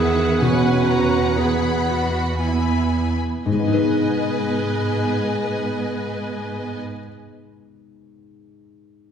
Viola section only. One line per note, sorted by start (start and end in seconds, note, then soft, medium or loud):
0.00 0.38 D#3 soft
0.00 1.34 B4 soft
0.41 1.38 C#4 soft
1.38 2.37 B3 soft
1.38 1.88 G#4 soft
1.88 2.39 F#4 soft
2.38 3.18 B3 soft
2.38 3.19 E4 soft
3.46 6.79 B3 soft
3.46 6.79 B4 soft